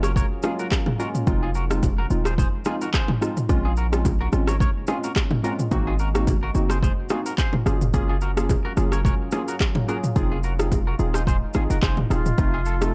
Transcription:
Already playing: 808-style bass F#1, ambient pad F#3 C#4 F4 G#4 A#4
0.03 clean electric guitar A#4 C#5, cross-stick, high bongo, shaker
0.16 clean electric guitar A#4 C#5, kick, low conga, shaker
0.43 synth keys G#3 A#3 C#4 F4, clean electric guitar F4 G#4, cross-stick, low bongo, shaker
0.59 clean electric guitar F#4 A#4, shaker
0.71 kick, cross-stick, clap, high bongo, shaker
0.86 mid tom, high bongo, low bongo
0.99 synth keys G#3 A#3 C#4 F4, clean electric guitar F#4 A#4, shaker
1.15 mid tom, shaker
1.27 808-style bass F1, ambient pad F3 G#3 D#4, synth keys G#3 C4 D#4 F4, kick, low conga, shaker
1.43 clean electric guitar F4 G#4
1.55 clean electric guitar F#4 A#4, shaker
1.70 synth keys G#3 C4 D#4 F4, cross-stick, shaker
1.83 kick, high bongo, low conga, shaker
1.98 clean electric guitar F#4 A#4
2.10 808-style bass D#1, synth keys G#3 C4 D#4 F4, shaker
2.25 clean electric guitar G#4 C5, cross-stick, high bongo, shaker
2.38 clean electric guitar G#4 C5, kick, low conga, shaker
2.65 synth keys G#3 C4 D#4 F4, clean electric guitar F4 G#4, cross-stick, low bongo, shaker
2.81 clean electric guitar F#4 A#4, shaker
2.94 clean electric guitar G#4 C5, kick, cross-stick, clap, high bongo, shaker
3.08 mid tom, high bongo, low bongo
3.21 synth keys G#3 C4 D#4 F4, cross-stick, shaker
3.37 mid tom, shaker
3.49 808-style bass A#1, synth keys G#3 C4 C#4 F4, ambient pad A#3 C#4, kick, low conga, shaker
3.65 clean electric guitar F4 G#4
3.77 clean electric guitar F#4 A#4, shaker
3.92 synth keys G#3 C4 C#4 F4, cross-stick, shaker
4.05 kick, high bongo, low conga, shaker
4.21 clean electric guitar F#4 A#4
4.32 808-style bass G#1, synth keys G#3 C4 C#4 F4, cross-stick, shaker
4.47 clean electric guitar A#4 C#5, cross-stick, high bongo, shaker
4.60 clean electric guitar A#4 C#5, kick, low conga, shaker
4.87 synth keys G#3 C4 C#4 F4, clean electric guitar F4 G#4, cross-stick, low bongo, shaker
5.04 clean electric guitar F#4 A#4, shaker
5.16 kick, cross-stick, clap, high bongo, shaker
5.31 mid tom, high bongo, low bongo
5.43 synth keys G#3 C4 C#4 F4, clean electric guitar F#4 A#4, shaker
5.59 mid tom, shaker
5.71 808-style bass G#1, synth keys A#3 C4 D#4 F#4, ambient pad C4 F#4, kick, low conga, shaker
5.87 clean electric guitar F4 G#4
5.99 clean electric guitar F#4 A#4, shaker
6.14 synth keys A#3 C4 D#4 F#4, cross-stick, shaker
6.27 kick, high bongo, low conga, shaker
6.43 clean electric guitar F#4 A#4
6.55 808-style bass F#1, synth keys A#3 C4 D#4 F#4, shaker
6.70 clean electric guitar G#4 C5, cross-stick, high bongo, shaker
6.83 clean electric guitar G#4 C5, kick, low conga, shaker
7.09 synth keys A#3 C4 D#4 F#4, clean electric guitar F4 G#4, cross-stick, low bongo, shaker
7.26 clean electric guitar F#4 A#4, shaker
7.38 clean electric guitar G#4 C5, kick, clap, high bongo, shaker
7.53 mid tom, high bongo, low bongo
7.66 808-style bass F#1, ambient pad F#3 C#4 F4 G#4 A#4, synth keys A#3 C#4 F4 G#4, cross-stick, shaker
7.81 mid tom, shaker
7.94 synth keys A#3 C#4 F4 G#4, kick, low conga, shaker
8.09 clean electric guitar F4 G#4
8.21 clean electric guitar F#4 A#4, shaker
8.37 synth keys A#3 C#4 F4 G#4, cross-stick, shaker
8.49 kick, high bongo, low conga, shaker
8.65 clean electric guitar F#4 A#4
8.77 808-style bass F#1, synth keys A#3 C#4 F4 G#4, cross-stick, shaker
8.92 clean electric guitar A#4 C#5, cross-stick, high bongo, shaker
9.05 clean electric guitar A#4 C#5, kick, low conga, shaker
9.31 synth keys A#3 C#4 F4 G#4, clean electric guitar F4 G#4, cross-stick, low bongo, shaker
9.48 clean electric guitar F#4 A#4, shaker
9.60 kick, cross-stick, clap, high bongo, shaker
9.75 mid tom, high bongo, low bongo
9.88 synth keys A#3 C#4 F4 G#4, clean electric guitar F#4 A#4, shaker
10.04 mid tom, shaker
10.16 808-style bass F1, ambient pad G#3 D#4, synth keys C4 D#4 F4 G#4, kick, low conga, shaker
10.32 clean electric guitar F4 G#4
10.43 clean electric guitar F#4 A#4, shaker
10.59 synth keys C4 D#4 F4 G#4, cross-stick, shaker
10.72 kick, high bongo, low conga, shaker
10.87 clean electric guitar F#4 A#4
10.99 808-style bass D#1, synth keys C4 D#4 F4 G#4, shaker
11.14 clean electric guitar G#4 C5, cross-stick, high bongo, shaker
11.27 clean electric guitar G#4 C5, kick, low conga, shaker
11.54 808-style bass G#1, synth keys C4 D#4 F4 G#4, clean electric guitar F4 G#4, cross-stick, low bongo, shaker
11.70 808-style bass F1, clean electric guitar F#4 A#4, shaker
11.83 808-style bass F1, clean electric guitar G#4 C5, kick, cross-stick, clap, high bongo, shaker
11.97 mid tom, high bongo, low bongo
12.10 808-style bass D#1, synth keys C4 D#4 F4 G#4, flute F4, cross-stick, shaker
12.26 mid tom, shaker
12.38 808-style bass F1, ambient pad F3 A3 D#4, synth keys A3 C4 D#4 F4, kick, shaker
12.54 clean electric guitar F4 G#4
12.66 clean electric guitar F4 A4, shaker
12.81 synth keys A3 C4 D#4 F4, flute A4, cross-stick, shaker

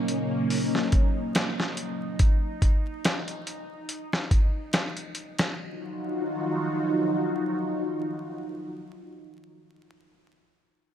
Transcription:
Already playing: string machine F#3 A#3 C#4, synth drone D#4
0.08 closed hi-hat
0.50 open hi-hat
0.75 snare
0.92 kick, closed hi-hat
1.35 snare, closed hi-hat
1.60 snare
1.77 closed hi-hat
2.19 kick, closed hi-hat
2.62 kick, closed hi-hat
3.05 snare, closed hi-hat
3.28 closed hi-hat
3.47 closed hi-hat
3.89 closed hi-hat
4.13 snare
4.31 kick, closed hi-hat
4.73 snare, closed hi-hat
4.97 closed hi-hat
5.15 closed hi-hat
5.38 snare, closed hi-hat
5.58 string machine D#4 F4 F#4

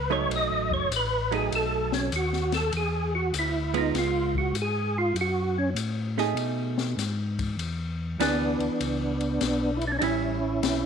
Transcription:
Already playing: tonewheel organ C#2 B4
0.10 hollow-body jazz guitar F#3 A3 D#4, tonewheel organ C#5
0.29 tonewheel organ B1, ride
0.36 tonewheel organ D#5
0.50 tonewheel organ A1
0.71 tonewheel organ F#1 C#5, kick
0.91 tonewheel organ A1, hi-hat pedal, ride
0.96 tonewheel organ B4
1.31 hollow-body jazz guitar F#3 A3 D#4, tonewheel organ G#4, ride
1.52 tonewheel organ B1 A4, ride
1.92 tonewheel organ C#4, snare
2.12 tonewheel organ D#2 F#4, hi-hat pedal, ride
2.33 snare
2.52 tonewheel organ A4, snare, ride
2.72 tonewheel organ E2, ride
2.77 tonewheel organ G#4
3.15 tonewheel organ F#4
3.33 tonewheel organ D2, hi-hat pedal, ride
3.39 tonewheel organ E4
3.74 hollow-body jazz guitar G#3 B3 F4, tonewheel organ D#4, ride
3.93 tonewheel organ C#2, snare, ride
3.98 tonewheel organ F4
4.35 tonewheel organ F#4, kick
4.53 tonewheel organ G#2, hi-hat pedal, ride
4.62 tonewheel organ G#4
4.98 tonewheel organ F4
5.14 tonewheel organ F#2, ride
5.21 tonewheel organ F#4
5.58 tonewheel organ C#4
5.75 tonewheel organ A2, hi-hat pedal, ride
6.18 hollow-body jazz guitar A3 D#4 G#4, snare
6.35 tonewheel organ B2, ride
6.78 snare
6.97 tonewheel organ G#2, snare, hi-hat pedal, ride
7.39 kick, ride
7.57 tonewheel organ E2, ride
8.19 tonewheel organ D2 B3 D4, hollow-body jazz guitar E3 B3 D4 G#4, snare, hi-hat pedal, ride
8.59 tonewheel organ D2, ride
8.80 tonewheel organ C#2, ride
9.21 ride
9.41 tonewheel organ B1, snare, hi-hat pedal, ride
9.77 tonewheel organ E4
9.81 ride
9.88 tonewheel organ D4
9.92 tonewheel organ C#4
9.99 tonewheel organ A1 D4 D#4, hollow-body jazz guitar G3 C#4, ride
10.03 tonewheel organ C#4 E4, hollow-body jazz guitar E4
10.62 tonewheel organ B1, snare, hi-hat pedal, ride

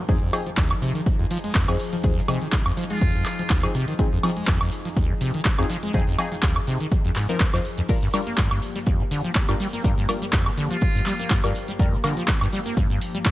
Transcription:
Already playing: ambient pad F3
0.09 acid bass F2, synth stab F3 C4 D#4 G#4, ambient pad D#4 G#4, kick, closed hi-hat
0.22 acid bass F2
0.33 synth stab F3 C4 D#4 G#4, closed hi-hat, open hi-hat, high woodblock
0.46 acid bass F3, closed hi-hat
0.57 acid bass D#2, kick, snare, clap, closed hi-hat
0.70 acid bass G#2, closed hi-hat, high woodblock
0.82 acid bass C3, closed hi-hat, open hi-hat
0.95 acid bass D#3, snare, closed hi-hat
1.06 kick, closed hi-hat
1.19 acid bass F2
1.30 acid bass F3, closed hi-hat, open hi-hat
1.44 acid bass G#3, closed hi-hat
1.55 acid bass F2, kick, snare, clap, closed hi-hat
1.68 acid bass F2, synth stab F3 C4 D#4 G#4, closed hi-hat, high woodblock
1.80 open hi-hat
1.93 acid bass F3, closed hi-hat
2.04 acid bass D#2, synth stab F3 C4 D#4 G#4, kick, closed hi-hat
2.17 acid bass G#2, snare
2.28 acid bass C3, synth stab F3 C4 D#4 G#4, closed hi-hat, open hi-hat, high woodblock
2.41 acid bass D#3, closed hi-hat
2.52 kick, snare, clap, closed hi-hat
2.66 acid bass F2, high woodblock
2.77 acid bass F3, closed hi-hat, open hi-hat
2.90 acid bass G#3, muted trumpet F4, closed hi-hat
3.01 acid bass F2, kick, closed hi-hat
3.15 acid bass F2, closed hi-hat
3.26 snare, clap, closed hi-hat, open hi-hat
3.39 acid bass F3, closed hi-hat
3.50 acid bass D#2, kick, snare, clap, closed hi-hat
3.63 acid bass G#2, synth stab F3 C4 D#4 G#4, snare, high woodblock
3.75 acid bass C3, closed hi-hat, open hi-hat
3.88 acid bass D#3, closed hi-hat
3.99 synth stab F3 C4 D#4 G#4, kick, closed hi-hat
4.12 acid bass F2
4.23 synth stab F3 C4 D#4 G#4, acid bass F3, closed hi-hat, open hi-hat, high woodblock
4.36 acid bass G#3, closed hi-hat
4.47 acid bass F2, kick, snare, clap, closed hi-hat
4.61 acid bass F2, closed hi-hat, high woodblock
4.71 closed hi-hat, open hi-hat
4.85 acid bass F3, snare, closed hi-hat
4.96 acid bass D#2, kick, closed hi-hat
5.10 acid bass G#2
5.21 acid bass C3, closed hi-hat, open hi-hat
5.34 acid bass D#3, closed hi-hat
5.45 kick, snare, clap, closed hi-hat
5.58 acid bass F2, synth stab F3 C4 D#4 G#4, closed hi-hat, high woodblock
5.70 acid bass F3, snare, closed hi-hat, open hi-hat
5.83 acid bass G#3, closed hi-hat
5.93 acid bass F2, synth stab F3 C4 D#4 G#4, kick, closed hi-hat
6.07 acid bass F2, snare
6.18 synth stab F3 C4 D#4 G#4, closed hi-hat, open hi-hat, high woodblock
6.32 acid bass F3, closed hi-hat
6.43 acid bass D#2, kick, snare, clap, closed hi-hat
6.56 acid bass G#2, high woodblock
6.67 acid bass C3, closed hi-hat, open hi-hat
6.80 acid bass D#3, closed hi-hat
6.92 kick, closed hi-hat
7.04 acid bass F2, closed hi-hat
7.16 acid bass G#2, snare, clap, closed hi-hat, open hi-hat
7.29 acid bass F3, synth stab F3 C4 D#4 A#4, closed hi-hat
7.40 acid bass F2, kick, clap, closed hi-hat
7.54 acid bass F2, synth stab F3 C4 D#4 C5, snare, closed hi-hat, high woodblock
7.65 open hi-hat
7.77 acid bass F2, closed hi-hat
7.89 ambient pad F3 A#3 G4, synth stab G3 D4 F4 A#4, kick, closed hi-hat, crash
8.02 acid bass G2
8.13 synth stab G3 D4 F4 A#4, acid bass G3, closed hi-hat, open hi-hat, high woodblock
8.27 acid bass A#3, closed hi-hat
8.37 acid bass G2, kick, snare, clap, closed hi-hat
8.50 acid bass G2, closed hi-hat, high woodblock
8.62 closed hi-hat, open hi-hat
8.76 acid bass G3, snare, closed hi-hat
8.86 acid bass F2, kick, closed hi-hat
9.00 acid bass A#2
9.11 acid bass D3, closed hi-hat, open hi-hat
9.24 acid bass F3, closed hi-hat
9.35 kick, snare, clap, closed hi-hat
9.49 acid bass G2, synth stab G3 D4 F4 A#4, closed hi-hat, high woodblock
9.60 acid bass G3, open hi-hat
9.73 acid bass A#3, closed hi-hat
9.84 acid bass G2, synth stab G3 D4 F4 A#4, kick, closed hi-hat
9.98 acid bass G2, snare
10.09 synth stab G3 D4 F4 A#4, closed hi-hat, open hi-hat, high woodblock
10.22 acid bass G3, closed hi-hat
10.33 acid bass F2, kick, snare, clap, closed hi-hat
10.46 acid bass A#2, high woodblock
10.57 acid bass D3, closed hi-hat, open hi-hat
10.71 acid bass F3, muted trumpet F4, closed hi-hat
10.81 kick, closed hi-hat
10.95 acid bass G2, closed hi-hat
11.06 acid bass G3, snare, clap, closed hi-hat, open hi-hat
11.19 acid bass A#3, closed hi-hat
11.30 acid bass G2, kick, snare, clap, closed hi-hat
11.44 acid bass G2, synth stab G3 D4 F4 A#4, snare, high woodblock
11.55 closed hi-hat, open hi-hat
11.68 acid bass G3, closed hi-hat
11.79 acid bass F2, synth stab G3 D4 F4 A#4, kick, closed hi-hat
11.93 acid bass A#2
12.04 acid bass D3, synth stab G3 D4 F4 A#4, closed hi-hat, open hi-hat, high woodblock
12.17 acid bass F3, closed hi-hat
12.28 kick, snare, clap, closed hi-hat
12.41 acid bass G2, closed hi-hat, high woodblock
12.53 acid bass G3, closed hi-hat, open hi-hat
12.66 acid bass A#3, snare, closed hi-hat
12.77 acid bass G2, kick, closed hi-hat
12.90 acid bass G2
13.01 closed hi-hat, open hi-hat
13.15 acid bass G3, closed hi-hat
13.25 acid bass F2, kick, snare, clap, closed hi-hat

